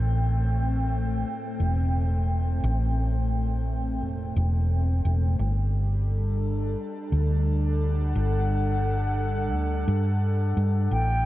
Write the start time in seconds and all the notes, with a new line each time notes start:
Already playing: A1 A2 A3 C4 G5
1.60 E1
2.64 A1
4.02 E1
4.36 E1
5.05 E1
5.39 G1 G3
5.94 A4
6.04 D4
7.12 D2
7.81 F#5
8.15 G1
9.53 D2
9.88 G2
10.57 G2
10.91 A1 A3 G5